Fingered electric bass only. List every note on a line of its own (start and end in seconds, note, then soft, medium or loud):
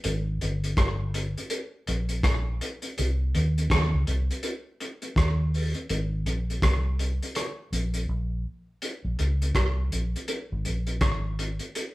0.05 0.40 G#1 loud
0.43 0.77 G1 medium
0.78 1.34 G1 medium
1.88 2.23 A#1 loud
2.24 2.59 A#1 medium
2.99 3.33 C2 loud
3.35 3.69 D#2 medium
3.71 3.92 D#2 loud
3.93 4.07 C#2 medium
4.08 4.29 C2 medium
5.17 5.73 D#2 loud
5.90 6.25 G#1 loud
6.26 6.61 A#1 medium
6.63 7.19 C2 loud
7.72 8.07 A#1 loud
8.09 8.44 A#1 medium
9.05 9.18 A#1 medium
9.20 9.54 C#2 medium
9.55 9.90 C2 medium
9.93 10.14 A#1 medium
10.52 10.65 G#1 medium
10.67 11.01 A#1 medium
11.02 11.58 G#1 medium